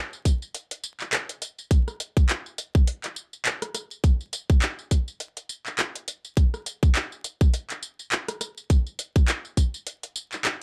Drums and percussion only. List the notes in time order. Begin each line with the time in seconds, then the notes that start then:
0.13 tambourine
0.25 kick, closed hi-hat, tambourine
0.42 tambourine
0.55 closed hi-hat, tambourine
0.71 closed hi-hat, tambourine
0.84 tambourine
1.00 clap, tambourine
1.13 cross-stick, clap, closed hi-hat, tambourine
1.29 closed hi-hat, tambourine
1.42 closed hi-hat, tambourine
1.58 tambourine
1.71 kick, closed hi-hat, tambourine
1.88 cross-stick, tambourine
2.00 closed hi-hat, tambourine
2.17 kick, closed hi-hat, tambourine
2.29 clap, closed hi-hat, tambourine
2.46 tambourine
2.58 closed hi-hat, tambourine
2.75 kick, tambourine
2.87 closed hi-hat, tambourine
3.04 clap, closed hi-hat, tambourine
3.16 tambourine
3.33 tambourine
3.45 clap, closed hi-hat, tambourine
3.62 cross-stick, closed hi-hat, tambourine
3.75 cross-stick, closed hi-hat, tambourine
3.91 tambourine
4.04 kick, closed hi-hat, tambourine
4.21 tambourine
4.33 closed hi-hat, tambourine
4.50 kick, closed hi-hat, tambourine
4.62 clap, closed hi-hat, tambourine
4.79 tambourine
4.91 kick, closed hi-hat, tambourine
5.08 tambourine
5.20 closed hi-hat, tambourine
5.37 closed hi-hat, tambourine
5.49 tambourine
5.66 clap, tambourine
5.79 cross-stick, clap, closed hi-hat, tambourine
5.95 closed hi-hat, tambourine
6.08 closed hi-hat, tambourine
6.25 tambourine
6.37 kick, closed hi-hat, tambourine
6.54 cross-stick, tambourine
6.66 closed hi-hat, tambourine
6.83 kick, closed hi-hat, tambourine
6.95 clap, closed hi-hat, tambourine
7.12 tambourine
7.24 closed hi-hat, tambourine
7.41 kick, tambourine
7.54 closed hi-hat, tambourine
7.70 clap, closed hi-hat, tambourine
7.83 tambourine
7.99 tambourine
8.12 clap, closed hi-hat, tambourine
8.28 cross-stick, closed hi-hat, tambourine
8.41 cross-stick, closed hi-hat, tambourine
8.57 tambourine
8.70 kick, closed hi-hat, tambourine
8.87 tambourine
8.99 closed hi-hat, tambourine
9.16 kick, closed hi-hat, tambourine
9.28 clap, closed hi-hat, tambourine
9.45 tambourine
9.57 kick, closed hi-hat, tambourine
9.74 tambourine
9.87 closed hi-hat, tambourine
10.03 closed hi-hat, tambourine
10.16 tambourine
10.32 clap, tambourine
10.45 cross-stick, clap, closed hi-hat, tambourine